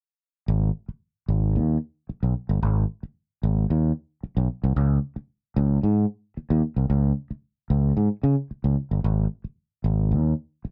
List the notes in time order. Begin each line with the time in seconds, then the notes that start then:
0.48 G#1
0.89 muted fingered electric bass stroke
1.28 G#1
1.55 D#2
2.09 muted fingered electric bass stroke
2.23 B1
2.49 G1
2.63 G#1
3.03 muted fingered electric bass stroke
3.43 G#1
3.70 D#2
4.23 muted fingered electric bass stroke
4.37 B1
4.64 C2
4.76 C#2
5.16 muted fingered electric bass stroke
5.56 C#2
5.83 G#2
6.37 muted fingered electric bass stroke
6.50 D#2
6.76 C2
6.90 C#2
7.31 muted fingered electric bass stroke
7.70 C#2
7.97 G#2
8.23 C#3
8.51 muted fingered electric bass stroke
8.64 C#2
8.91 G1
9.04 G#1
9.44 muted fingered electric bass stroke
9.84 G#1
10.11 D#2
10.65 muted fingered electric bass stroke